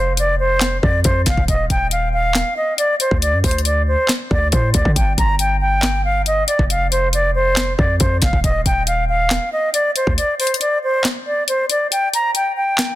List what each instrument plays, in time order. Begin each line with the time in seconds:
Already playing: 808-style bass F1, flute C5
0.17 flute D5, closed hi-hat
0.40 flute C5
0.61 snare, clap, closed hi-hat
0.82 808-style bass F2, flute D5, kick
1.04 808-style bass F2, flute C5, kick, closed hi-hat
1.26 808-style bass F1, flute F5, kick, snare, closed hi-hat
1.37 808-style bass F1, kick
1.48 808-style bass D#1, flute D#5, kick, closed hi-hat
1.70 808-style bass D#1, flute G5, kick, closed hi-hat
1.91 flute F5, closed hi-hat
2.13 flute F5
2.35 snare, clap, closed hi-hat
2.57 flute D#5
2.78 flute D5, closed hi-hat
3.00 flute C5, closed hi-hat
3.11 808-style bass D2, kick
3.22 flute D5, closed hi-hat
3.33 808-style bass F#2
3.44 808-style bass D2, flute C5, kick, closed hi-hat, open hi-hat
3.51 closed hi-hat
3.58 closed hi-hat
3.65 flute D5, closed hi-hat
3.88 flute C5
4.08 snare, clap, closed hi-hat
4.31 808-style bass D2, flute D5, kick
4.52 808-style bass A2, flute C5, kick, closed hi-hat
4.74 808-style bass D2, flute D5, kick, closed hi-hat
4.85 808-style bass D3, kick
4.96 808-style bass G1, flute G5, kick, closed hi-hat
5.18 808-style bass G1, flute A#5, kick, closed hi-hat
5.39 flute G5, closed hi-hat
5.61 flute G5
5.82 snare, clap, closed hi-hat
6.05 flute F5
6.26 flute D#5, closed hi-hat
6.48 flute D5, closed hi-hat
6.59 808-style bass F1, kick
6.70 flute F5, closed hi-hat
6.91 flute C5, closed hi-hat
7.13 flute D5, closed hi-hat
7.35 flute C5
7.56 snare, clap, closed hi-hat
7.78 808-style bass F2, flute D5, kick
8.00 808-style bass F2, flute C5, kick, closed hi-hat
8.22 808-style bass F1, flute F5, kick, snare, closed hi-hat
8.33 808-style bass F1, kick
8.44 808-style bass D#1, flute D#5, kick, closed hi-hat
8.66 808-style bass D#1, flute G5, kick, closed hi-hat
8.87 flute F5, closed hi-hat
9.09 flute F5
9.30 snare, clap, closed hi-hat
9.53 flute D#5
9.73 flute D5, closed hi-hat
9.96 flute C5, closed hi-hat
10.07 808-style bass D2, kick
10.17 flute D5, closed hi-hat
10.39 flute C5, closed hi-hat, open hi-hat
10.47 closed hi-hat
10.54 closed hi-hat
10.61 flute D5, closed hi-hat
10.84 flute C5
11.04 snare, clap, closed hi-hat
11.26 flute D5
11.48 flute C5, closed hi-hat
11.70 flute D5, closed hi-hat
11.92 flute G5, closed hi-hat
12.13 flute A#5, closed hi-hat
12.35 flute G5, closed hi-hat
12.57 flute G5
12.78 snare, clap, closed hi-hat